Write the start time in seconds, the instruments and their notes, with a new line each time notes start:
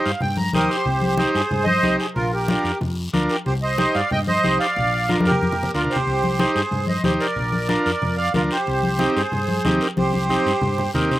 Already playing: transistor combo organ D#4 G4 C5
0.04 fretless electric bass G2, accordion F5, short guiro
0.21 fretless electric bass G2, accordion G5, high conga, low conga, long guiro
0.37 accordion A#5, high conga
0.53 fretless electric bass D#2, transistor combo organ D#4 G4 C5, accordion G4 A#4 D#6, high conga, low conga, short guiro
0.69 accordion G4 C5 C6, short guiro
0.86 fretless electric bass C2, high conga, low conga, long guiro
1.02 high conga
1.17 transistor combo organ D#4 G4 C5, high conga, short guiro
1.33 fretless electric bass G2, accordion G#4 C5, short guiro
1.51 fretless electric bass G2, high conga, low conga, long guiro
1.64 accordion C5 D#5, high conga
1.83 fretless electric bass C2, transistor combo organ D#4 G4 C5, high conga, low conga, short guiro
1.98 accordion G#4 C5, short guiro
2.14 fretless electric bass A#1, accordion F4 A#4, high conga, low conga, long guiro
2.32 accordion G4 A#4
2.48 transistor combo organ D4 F4 A#4, high conga, short guiro
2.64 fretless electric bass F2, short guiro
2.81 fretless electric bass F2, high conga, low conga, long guiro
3.13 fretless electric bass D2, transistor combo organ D4 F4 A#4, high conga, short guiro
3.29 accordion G4 A#4, short guiro
3.46 fretless electric bass C2, accordion G4 C5, high conga, low conga, long guiro
3.62 accordion C5 D#5
3.78 transistor combo organ D#4 G4 C5, accordion C5 D#5, high conga, short guiro
3.95 fretless electric bass G2, accordion D5 F5, short guiro
4.10 fretless electric bass G2, accordion D#5 G5, high conga, low conga, long guiro
4.27 accordion C5 D#5, high conga
4.44 fretless electric bass C2, transistor combo organ D#4 G4 C5, high conga, short guiro
4.60 accordion D5 F5, short guiro
4.76 fretless electric bass A#1, high conga, low conga, long guiro
5.09 transistor combo organ D4 F4 A#4, accordion F4 A#4, high conga, short guiro
5.20 high conga
5.25 fretless electric bass F2, accordion G4 A#4, short guiro
5.31 low conga
5.41 fretless electric bass F2, high conga, long guiro
5.52 low conga
5.63 low conga
5.74 fretless electric bass D2, transistor combo organ D4 F4 A#4, accordion F4 A#4, short guiro
5.85 low conga
5.90 accordion G4 C5, short guiro
5.96 low conga
6.07 fretless electric bass C2, high conga, long guiro
6.23 high conga
6.39 transistor combo organ D#4 G4 C5, high conga, short guiro
6.55 fretless electric bass G2, accordion G#4 C5, short guiro
6.71 fretless electric bass G2, high conga, low conga, long guiro
6.87 accordion C5 D#5, high conga
7.04 fretless electric bass D#2, transistor combo organ D#4 G4 C5, accordion G4 C5, high conga, low conga, short guiro
7.20 accordion A#4 D5, short guiro
7.36 fretless electric bass A#1, high conga, low conga, long guiro
7.52 high conga
7.69 transistor combo organ D4 F4 A#4, high conga, short guiro
7.85 fretless electric bass F2, accordion A#4 D5, short guiro
8.02 fretless electric bass F2, high conga, low conga, long guiro
8.17 accordion D5 F5
8.34 fretless electric bass D2, transistor combo organ D4 F4 A#4, accordion F4 A#4, high conga, low conga, short guiro
8.51 accordion G4 C5, short guiro
8.67 fretless electric bass C2, high conga, long guiro
8.83 high conga
8.99 transistor combo organ C4 D#4 G4, high conga, short guiro
9.16 fretless electric bass G2, accordion G#4 C5, short guiro
9.32 fretless electric bass G2, high conga, low conga, long guiro
9.48 high conga
9.65 fretless electric bass D#2, transistor combo organ C4 D#4 G4, high conga, low conga, short guiro
9.81 accordion G4 A#4, short guiro
9.97 fretless electric bass C2, accordion G4 C5, high conga, long guiro
10.13 high conga
10.29 transistor combo organ C4 D#4 G4, high conga, short guiro
10.46 fretless electric bass G2, short guiro
10.61 fretless electric bass G2, low conga, long guiro
10.78 low conga
10.94 fretless electric bass D#2, transistor combo organ C4 D#4 G4, accordion A#4, low conga, short guiro
11.11 accordion C5, low conga, short guiro